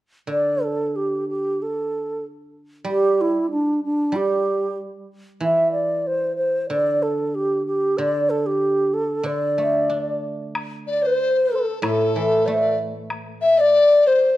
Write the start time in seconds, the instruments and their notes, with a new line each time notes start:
0.27 guzheng D3, xiao D5
0.64 xiao A4
0.96 xiao G4
1.29 xiao G4
1.62 xiao A4
2.85 guzheng G3
2.89 xiao G4
3.21 xiao E4
3.51 xiao D4
3.84 xiao D4
4.12 guzheng G3
4.16 xiao G4
5.40 guzheng E3, xiao E5
5.72 xiao D5
6.07 xiao C5
6.37 xiao C5
6.70 guzheng D3, xiao D5
7.03 xiao A4
7.35 xiao G4
7.67 xiao G4
7.98 guzheng D3, xiao D5
8.30 xiao A4
8.46 xiao G4
8.94 xiao A4
9.23 guzheng D3, xiao D5
9.58 guzheng A3
9.89 guzheng D4
10.55 high woodblock
10.87 dizi D5, xiao D5
11.02 dizi C5, xiao C5
11.44 dizi C5
11.51 dizi A4, xiao A4
11.82 guzheng A2, dizi A4, high woodblock
11.88 xiao A4
12.16 guzheng E3
12.46 guzheng A3, dizi D5
12.54 dizi C5
12.59 dizi D5
13.10 high woodblock
13.41 dizi E5, xiao E5
13.58 dizi D5, xiao D5
14.06 dizi C5, xiao C5